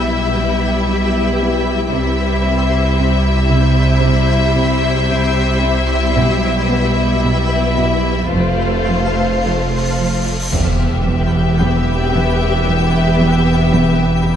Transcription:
Already playing: double bass section B1, sub bass B1, cello section B2, viola section G3, violin section E4 E5, synth texture G4 B4 E5
0.36 cello section B2
0.88 cello section B2
1.41 cello section B3
1.92 double bass section C2, sub bass C2, cello section C3, viola section G3, violin section E4 E5, synth texture G4 C5 E5
2.45 cello section C4
2.98 cello section C3
3.51 cello section C3
4.03 cello section C3
4.57 cello section C3
5.10 cello section C3
5.63 cello section C4
6.15 sub bass B1, double bass section B1, cello section B2, timpani B2, synth texture B4, cymbal swell
6.69 cello section B3
7.23 cello section B2
7.78 cello section B2
8.32 double bass section F1, sub bass F1, cello section F2, viola section A3, violin section F4 C5, synth texture A4 C5 F5
8.88 cello section F2
9.43 cello section F2
9.98 cello section F3
10.52 sub bass E1, double bass section E1, cello section E2, viola section B3, violin section G4 E5, synth texture G4 B4 G5, impact
11.06 cello section E2
11.59 cello section E2
12.13 cello section E2
12.66 cello section E2
13.19 cello section E2
13.73 cello section E2
14.25 cello section E2

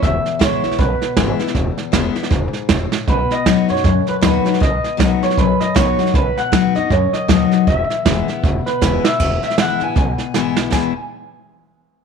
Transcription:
0.03 upright bass E1, steel-string acoustic guitar E2, clean electric guitar E5, kick, snare
0.25 muted upright bass stroke, snare
0.39 upright bass G#1, steel-string acoustic guitar E3 G#3 B3 E4, clean electric guitar C#5, kick, snare, hi-hat pedal
0.64 upright bass B1, steel-string acoustic guitar B3 E4, snare
0.71 snare
0.79 upright bass B1, steel-string acoustic guitar B2, clean electric guitar B4, kick, snare
1.01 muted upright bass stroke, snare
1.17 upright bass G#1, steel-string acoustic guitar E3 G#3 B3 E4, kick, snare, hi-hat pedal
1.39 steel-string acoustic guitar B3 E4, muted upright bass stroke, snare
1.47 snare
1.55 upright bass E1, steel-string acoustic guitar E2, kick, snare
1.77 muted upright bass stroke, snare
1.92 upright bass E1, steel-string acoustic guitar E3 G#3 B3 E4, kick, snare, hi-hat pedal
2.15 steel-string acoustic guitar B3 E4, muted upright bass stroke, snare
2.23 snare
2.30 upright bass E1, steel-string acoustic guitar G#2, kick, snare
2.53 snare
2.69 upright bass E1, steel-string acoustic guitar A2, kick, snare, hi-hat pedal
2.92 muted upright bass stroke, snare
3.07 upright bass B1, steel-string acoustic guitar B2, clean electric guitar B4, kick, snare
3.31 clean electric guitar D#5, snare
3.46 upright bass D#2, steel-string acoustic guitar F#3 B3 D#4 F#4, kick, snare, hi-hat pedal
3.68 upright bass F#2, steel-string acoustic guitar D#4 F#4, clean electric guitar C#5, snare
3.76 snare
3.84 steel-string acoustic guitar F#2, upright bass F#2, kick, snare
4.07 clean electric guitar B4, muted upright bass stroke, snare
4.21 upright bass D#2, steel-string acoustic guitar F#3 B3 D#4 F#4, clean electric guitar B4, kick, snare, hi-hat pedal
4.45 steel-string acoustic guitar D#4 F#4, muted upright bass stroke, snare
4.53 snare
4.60 upright bass B1, steel-string acoustic guitar B2, clean electric guitar D#5, kick, snare
4.84 muted upright bass stroke, snare
4.97 upright bass B1, steel-string acoustic guitar F#3 B3 D#4 F#4, kick, snare, hi-hat pedal
5.22 clean electric guitar C#5, muted upright bass stroke, snare
5.30 snare
5.38 upright bass B1, steel-string acoustic guitar F#2, clean electric guitar B4, kick, snare
5.61 clean electric guitar D#5, muted upright bass stroke, snare
5.75 upright bass B1, steel-string acoustic guitar F#3 B3 D#4 F#4, clean electric guitar C#5, kick, snare, hi-hat pedal
5.99 steel-string acoustic guitar D#4 F#4, muted upright bass stroke, snare
6.06 snare
6.14 upright bass B1, steel-string acoustic guitar B2, clean electric guitar B4, kick, snare
6.37 clean electric guitar F#5, muted upright bass stroke, snare
6.52 upright bass D#2, steel-string acoustic guitar F#3 B3 D#4 F#4, kick, snare, hi-hat pedal
6.75 upright bass F#2, steel-string acoustic guitar D#4 F#4, clean electric guitar D#5, snare
6.90 upright bass F#2, steel-string acoustic guitar F#2, clean electric guitar C#5, kick, snare
7.13 clean electric guitar D#5, muted upright bass stroke, snare
7.28 upright bass D#2, steel-string acoustic guitar F#3 B3 D#4 F#4, clean electric guitar D#5, kick, snare, hi-hat pedal
7.51 muted upright bass stroke, snare
7.67 upright bass E1, steel-string acoustic guitar E2, clean electric guitar E5, kick, snare
7.90 muted upright bass stroke, snare
8.05 upright bass E1, steel-string acoustic guitar E3 G#3 B3 E4, kick, snare, hi-hat pedal
8.28 steel-string acoustic guitar B3 E4, muted upright bass stroke, snare
8.44 upright bass E1, steel-string acoustic guitar B2, kick, snare
8.66 clean electric guitar B4, muted upright bass stroke, snare
8.81 upright bass E1, steel-string acoustic guitar E3 G#3 B3 E4, kick, snare, hi-hat pedal
9.04 steel-string acoustic guitar B3 E4, clean electric guitar E5, snare
9.20 upright bass E1, steel-string acoustic guitar E2, kick, snare, crash
9.43 clean electric guitar E5, muted upright bass stroke, snare
9.50 snare
9.58 upright bass E1, steel-string acoustic guitar E3 G#3 B3 E4, clean electric guitar F#5, snare, hi-hat pedal
9.80 upright bass A1, steel-string acoustic guitar B3 E4, clean electric guitar G#5, snare
9.96 upright bass B1, steel-string acoustic guitar B2, clean electric guitar G#5, kick, snare
10.18 muted upright bass stroke, snare
10.34 upright bass G#1, steel-string acoustic guitar E3 G#3 B3 E4, snare, hi-hat pedal
10.56 upright bass B1, steel-string acoustic guitar B3 E4, snare
10.72 upright bass E1, steel-string acoustic guitar E2 B2 E3 G#3 B3 E4, clean electric guitar G#5, kick, snare, crash

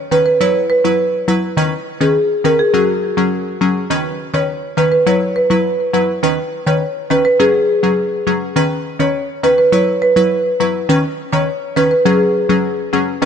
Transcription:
0.11 synth stab D#3 C#4 B4, marimba B4
0.26 marimba B4
0.40 synth stab F#3 E4 B4, marimba C#5
0.70 marimba B4
0.84 synth stab F#3 E4 B4
1.28 synth stab F#3 E4 B4
1.57 synth stab D#3 C#4 B4
2.01 synth stab D#3 C#4 B4, marimba G#4
2.44 synth stab D#3 C#4 B4, marimba A#4
2.59 marimba G#4
2.74 synth stab F#3 C#4 G#4, marimba F#4
3.17 synth stab F#3 C#4 G#4
3.61 synth stab F#3 C#4 G#4
3.90 synth stab D#3 C#4 B4
4.34 synth stab D#3 C#4 B4, marimba C#5
4.77 synth stab D#3 C#4 B4, marimba B4
4.92 marimba B4
5.06 synth stab F#3 E4 B4, marimba C#5
5.36 marimba B4
5.50 synth stab F#3 E4 B4
5.93 synth stab F#3 E4 B4
6.23 synth stab D#3 C#4 B4
6.66 synth stab D#3 C#4 B4, marimba C#5
7.10 synth stab D#3 C#4 B4, marimba B4
7.25 marimba B4
7.39 synth stab F#3 C#4 G#4, marimba G#4
7.83 synth stab F#3 C#4 G#4
8.27 synth stab F#3 C#4 G#4
8.56 synth stab D#3 C#4 B4
8.99 synth stab D#3 C#4 B4, marimba C#5
9.43 synth stab D#3 C#4 B4, marimba B4
9.58 marimba B4
9.72 synth stab F#3 E4 B4, marimba C#5
10.02 marimba B4
10.16 synth stab F#3 E4 B4
10.60 synth stab F#3 E4 B4
10.89 synth stab D#3 C#4 B4
11.32 synth stab D#3 C#4 B4, marimba C#5
11.76 synth stab D#3 C#4 B4, marimba B4
11.91 marimba B4
12.05 synth stab F#3 C#4 G#4, marimba G#4
12.49 synth stab F#3 C#4 G#4
12.93 synth stab F#3 C#4 G#4
13.22 synth stab D#3 C#4 B4

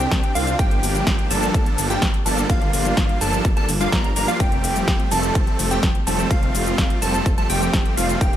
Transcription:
Already playing: supersaw synth C4 D4 G4, digital synth lead G5
0.00 shaker
0.12 detuned saw bass C2, kick, snare, closed hi-hat, shaker
0.23 closed hi-hat
0.35 detuned saw bass C2, supersaw synth C4 D4 F4, digital synth lead F5, open hi-hat, shaker
0.47 closed hi-hat, shaker
0.59 detuned saw bass G1, supersaw synth F3 G3 A#3 D4 G4, digital synth lead G5, kick, closed hi-hat, shaker
0.71 closed hi-hat
0.83 detuned saw bass G1, open hi-hat, shaker
0.95 closed hi-hat, shaker
1.07 detuned saw bass G1, kick, snare, closed hi-hat, shaker
1.19 closed hi-hat
1.31 detuned saw bass G1, supersaw synth F3 G3 A#3 D4 A4, digital synth lead A5, open hi-hat, shaker
1.43 closed hi-hat, shaker
1.54 detuned saw bass G1, kick, closed hi-hat, shaker
1.66 closed hi-hat
1.78 detuned saw bass G1, open hi-hat, shaker
1.90 supersaw synth F3 G3 A#3 D4 G4, digital synth lead G5, closed hi-hat, shaker
2.02 detuned saw bass G1, kick, snare, closed hi-hat, shaker
2.14 closed hi-hat
2.26 detuned saw bass G1, supersaw synth F3 G3 A#3 D4 A4, digital synth lead A5, open hi-hat, shaker
2.38 closed hi-hat, shaker
2.50 detuned saw bass G1, supersaw synth G3, digital synth lead F5, kick, closed hi-hat, shaker
2.62 closed hi-hat
2.73 detuned saw bass G1, open hi-hat, shaker
2.85 closed hi-hat, shaker
2.97 detuned saw bass G1, kick, snare, closed hi-hat, shaker
3.09 closed hi-hat
3.21 detuned saw bass G1, supersaw synth F3 G3 A#3 D4 A4, digital synth lead A5, open hi-hat, shaker
3.33 closed hi-hat, shaker
3.45 detuned saw bass G1, kick, closed hi-hat, shaker
3.57 supersaw synth F3 G3 A#3 D4 A4, digital synth lead A5, closed hi-hat
3.69 detuned saw bass G1, open hi-hat, shaker
3.81 supersaw synth F3 G3 A#3 D4 F4, digital synth lead F5, closed hi-hat, shaker
3.92 detuned saw bass G1, supersaw synth F3 G3 A#3 D4 A#4, digital synth lead A#5, kick, snare, closed hi-hat, shaker
4.04 closed hi-hat
4.16 detuned saw bass G1, supersaw synth F3 G3 A#3 D4 A#4, digital synth lead A#5, open hi-hat, shaker
4.28 supersaw synth F3 G3 A#3 D4 F4, digital synth lead F5, closed hi-hat, shaker
4.40 detuned saw bass F1, supersaw synth F3 G3 A3 C4 G4, digital synth lead G5, kick, closed hi-hat, shaker
4.52 closed hi-hat
4.64 detuned saw bass F1, open hi-hat, shaker
4.76 closed hi-hat, shaker
4.88 detuned saw bass F1, kick, snare, closed hi-hat, shaker
5.00 closed hi-hat
5.11 detuned saw bass F1, supersaw synth F3 G3 A3 C4 A4, digital synth lead A5, open hi-hat, shaker
5.23 closed hi-hat, shaker
5.35 detuned saw bass F1, kick, closed hi-hat, shaker
5.47 closed hi-hat
5.59 detuned saw bass F1, open hi-hat, shaker
5.71 supersaw synth F3 G3 A3 C4 G4, digital synth lead G5, closed hi-hat, shaker
5.83 detuned saw bass F1, kick, snare, closed hi-hat, shaker
5.95 closed hi-hat
6.07 detuned saw bass F1, supersaw synth F3 G3 A3 C4 A4, digital synth lead A5, open hi-hat, shaker
6.19 closed hi-hat, shaker
6.31 detuned saw bass F1, supersaw synth F3 G3 A3 C4 F4, digital synth lead F5, kick, closed hi-hat, shaker
6.43 closed hi-hat
6.55 detuned saw bass F1, open hi-hat, shaker
6.67 closed hi-hat, shaker
6.78 detuned saw bass F1, kick, snare, closed hi-hat, shaker
6.90 closed hi-hat
7.02 detuned saw bass F1, supersaw synth F3 G3 A3 C4 A4, digital synth lead A5, open hi-hat, shaker
7.14 closed hi-hat, shaker
7.26 detuned saw bass F1, kick, closed hi-hat, shaker
7.38 supersaw synth F3 G3 A3 C4 A4, digital synth lead A5, closed hi-hat
7.50 detuned saw bass F1, supersaw synth F3 G3 A3 C4 G4, digital synth lead G5, open hi-hat, shaker
7.62 closed hi-hat, shaker
7.73 detuned saw bass F1, kick, snare, closed hi-hat, shaker
7.86 closed hi-hat
7.97 detuned saw bass F1, supersaw synth F3 G3 A3 C4 F4, digital synth lead F5, open hi-hat, shaker
8.09 closed hi-hat, shaker
8.21 detuned saw bass D#1, supersaw synth A#3 D#4 G4, digital synth lead G5, kick, closed hi-hat, shaker
8.33 closed hi-hat

